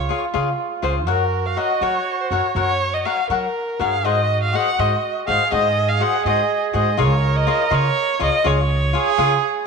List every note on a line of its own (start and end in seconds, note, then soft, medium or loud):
0.00 1.10 F4 medium
0.00 0.16 C#5 medium
0.09 0.24 F4 soft
0.09 0.24 G#4 soft
0.09 0.25 C#5 soft
0.09 0.25 F5 medium
0.34 0.51 C#3 medium
0.34 0.49 F4 medium
0.34 0.49 G#4 medium
0.34 0.49 C#5 medium
0.34 0.49 F5 soft
0.82 1.07 C#2 medium
0.82 0.98 F4 medium
0.82 0.98 G#4 soft
0.82 0.94 C5 medium
0.82 0.98 C#5 medium
0.82 0.98 F5 medium
1.07 1.55 F#2 medium
1.07 1.22 F#4 medium
1.07 3.52 F#4 medium
1.07 1.22 A#4 medium
1.07 1.48 A#4 medium
1.07 1.23 C#5 medium
1.07 1.23 F#5 medium
1.46 1.59 F5 medium
1.57 1.72 F#4 medium
1.57 1.72 A#4 soft
1.57 1.72 C#5 medium
1.57 1.84 D#5 medium
1.57 1.72 F#5 soft
1.81 1.97 F#3 medium
1.81 1.96 F#4 medium
1.81 1.97 A#4 soft
1.81 2.23 C#5 medium
1.81 1.97 C#5 medium
1.81 1.97 F#5 medium
2.21 2.31 C5 medium
2.31 2.39 F#2 medium
2.31 2.46 F#4 soft
2.31 2.46 A#4 soft
2.31 2.46 C#5 medium
2.31 2.55 C#5 medium
2.31 2.47 F#5 medium
2.55 3.03 F#2 medium
2.55 2.71 F#4 medium
2.55 2.71 A#4 medium
2.55 2.71 C#5 medium
2.55 2.95 C#5 medium
2.55 2.71 F#5 medium
2.94 3.07 D#5 medium
3.05 3.20 F#4 soft
3.05 3.20 A#4 soft
3.05 3.21 C#5 soft
3.05 3.30 F5 medium
3.05 3.21 F#5 medium
3.30 3.46 F#3 medium
3.30 3.45 F#4 medium
3.30 3.45 A#4 soft
3.30 3.82 A#4 medium
3.30 3.45 C#5 medium
3.30 3.45 F#5 medium
3.79 4.05 G2 medium
3.79 3.94 F#4 soft
3.79 4.05 G#4 medium
3.79 3.95 A#4 soft
3.79 3.95 C#5 medium
3.79 4.06 F5 medium
3.79 3.95 F#5 medium
4.04 4.53 G#2 medium
4.04 5.28 F#4 medium
4.04 4.19 F#4 medium
4.04 4.20 G#4 medium
4.04 4.20 C5 medium
4.04 4.42 D#5 medium
4.04 4.20 D#5 medium
4.43 4.57 F5 medium
4.53 4.68 F#4 soft
4.53 4.68 G#4 medium
4.53 4.69 C5 medium
4.53 4.69 D#5 medium
4.53 4.81 F#5 medium
4.79 4.95 G#2 medium
4.79 4.93 F#4 soft
4.79 4.94 G#4 medium
4.79 4.93 C5 soft
4.79 5.16 D#5 medium
4.79 4.94 D#5 medium
5.26 5.36 G#2 medium
5.26 5.42 F#4 medium
5.26 6.98 G#4 medium
5.26 5.42 G#4 medium
5.26 5.43 C5 medium
5.26 5.43 D#5 medium
5.26 5.51 F5 medium
5.51 6.00 G#2 medium
5.51 5.66 F#4 soft
5.51 5.66 G#4 medium
5.51 5.67 C5 medium
5.51 5.67 D#5 medium
5.51 5.90 D#5 medium
5.89 6.03 F5 medium
6.00 6.15 F#4 soft
6.00 6.15 G#4 soft
6.00 6.16 C5 soft
6.00 6.16 D#5 medium
6.00 6.25 F#5 medium
6.25 6.41 G#2 medium
6.25 6.40 F#4 medium
6.25 6.40 G#4 soft
6.25 6.41 C5 medium
6.25 6.60 D#5 medium
6.25 6.41 D#5 medium
6.73 6.99 G#2 medium
6.73 6.89 F#4 soft
6.73 6.89 G#4 medium
6.73 6.89 C5 medium
6.73 7.02 D#5 medium
6.73 6.89 D#5 medium
6.97 7.46 C#2 medium
6.97 7.13 F4 medium
6.97 7.13 G#4 medium
6.97 8.63 A#4 medium
6.97 7.13 C#5 medium
6.97 7.38 C#5 medium
6.97 7.13 F5 medium
7.37 7.76 D#5 medium
7.47 7.62 F4 medium
7.47 7.62 G#4 soft
7.47 7.62 C#5 medium
7.47 7.62 F5 medium
7.70 7.87 C#3 medium
7.70 7.86 F4 medium
7.70 7.86 G#4 medium
7.70 7.86 C#5 medium
7.70 7.86 F5 medium
7.74 8.22 C#5 medium
8.19 8.28 C#2 medium
8.19 8.35 F4 medium
8.19 8.35 G#4 medium
8.19 8.35 C#5 medium
8.19 8.48 D#5 medium
8.19 8.36 F5 medium
8.44 8.93 C#2 medium
8.44 8.59 F4 medium
8.44 8.60 G#4 medium
8.44 8.60 C#5 medium
8.44 9.44 C#5 medium
8.44 8.60 F5 medium
8.93 9.08 F4 medium
8.93 9.63 G#4 loud
8.93 9.09 G#4 medium
8.93 9.09 C#5 medium
8.93 9.09 F5 medium
9.18 9.34 C#3 medium
9.18 9.33 F4 medium
9.18 9.33 G#4 medium
9.18 9.34 C#5 medium
9.18 9.34 F5 medium